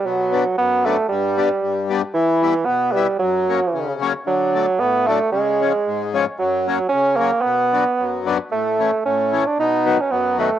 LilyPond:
<<
  \new Staff \with { instrumentName = "Bassoon" } { \time 2/4 \key b \minor \tempo 4 = 113 fis4 b8 a8 | g4. r8 | e4 b8 g8 | fis4. r8 |
fis4 b8 a8 | gis4. r8 | fis4 cis'8 ais8 | b4. r8 |
a4 cis'8. d'16 | dis'8. cis'16 b8 a8 | }
  \new Staff \with { instrumentName = "Accordion" } { \clef bass \time 2/4 \key b \minor << { r8 <fis b d'>8 r8 <fis b d'>8 | r8 <g b d'>8 r8 <g b d'>8 | r8 <g b e'>8 r8 <g b e'>8 | r8 <fis ais cis'>8 r8 <fis ais cis'>8 |
r8 <fis a d'>8 r8 <fis a d'>8 | r8 <eis gis cis'>8 r8 <eis gis cis'>8 | r8 <fis ais cis'>8 r8 <fis ais cis'>8 | r8 <fis b d'>8 r8 <fis b d'>8 |
r8 <e a cis'>8 r8 <e a cis'>8 | r8 <dis fis b>8 r8 <dis fis b>8 | } \\ { b,4 fis,4 | g,4 g,4 | e4 b,4 | fis,4 cis4 |
d4 a,4 | cis4 gis,4 | fis,4 cis4 | b,4 fis,4 |
a,4 a,4 | b,4 fis,4 | } >> }
>>